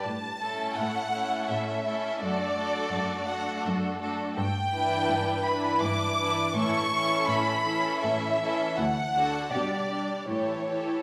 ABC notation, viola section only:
X:1
M:3/4
L:1/8
Q:1/4=82
K:Amix
V:1 name="Viola section"
z [A,C]2 [A,C]2 [A,C] | [A,D] [A,D]2 [A,D]2 [A,D] | z [E,D]2 [E,D]2 [E,D] | [E,C] [E,C]2 [E,C]2 [E,C] |
z [D,D] [G,D] [G,D] [E,E] [E,E] |]